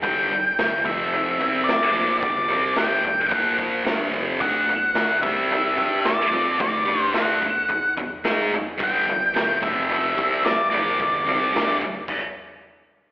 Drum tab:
CC |--------|--------|--------|--------|
SD |--o---o-|--o---o-|--o---o-|--o---o-|
FT |oooooooo|oooooooo|oooooooo|oooooooo|
BD |o--o-o--|o--ooo-o|o--o-o--|o--ooo--|

CC |--------|----x---|
SD |--o---o-|--o-----|
FT |oooooooo|oooo----|
BD |o--o-o--|o--oo---|